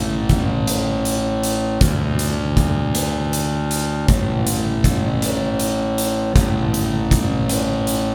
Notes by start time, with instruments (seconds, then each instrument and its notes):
Already playing: fingered electric bass A1
0.29 kick, closed hi-hat
0.67 closed hi-hat
1.05 closed hi-hat
1.43 closed hi-hat
1.81 fingered electric bass D2, kick, closed hi-hat
2.19 closed hi-hat
2.57 kick, closed hi-hat
2.95 closed hi-hat
3.33 closed hi-hat
3.71 closed hi-hat
4.08 fingered electric bass A1, kick, closed hi-hat
4.47 closed hi-hat
4.84 kick, closed hi-hat
5.22 closed hi-hat
5.60 closed hi-hat
5.98 closed hi-hat
6.36 fingered electric bass A1, kick, closed hi-hat
6.74 closed hi-hat
7.11 kick, closed hi-hat
7.49 closed hi-hat
7.87 closed hi-hat